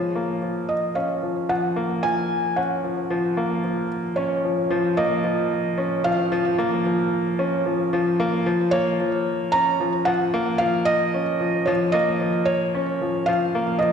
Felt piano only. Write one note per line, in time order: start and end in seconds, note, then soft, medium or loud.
0.00 0.71 C#5 medium
0.69 0.97 D#5 medium
0.95 1.51 F5 medium
1.49 2.05 F#5 medium
2.03 2.58 G#5 medium
2.56 3.87 F#5 medium
4.16 5.00 C#5 medium
4.97 6.08 D#5 loud
6.04 6.54 F5 loud
8.71 9.55 C#5 loud
9.52 10.08 A#5 loud
10.05 10.61 F#5 loud
10.58 10.87 F5 loud
10.85 11.69 D#5 loud
11.66 11.94 C#5 medium
11.92 12.48 D#5 loud
12.45 13.30 C#5 loud
13.26 13.77 F5 loud
13.79 13.92 D#5 medium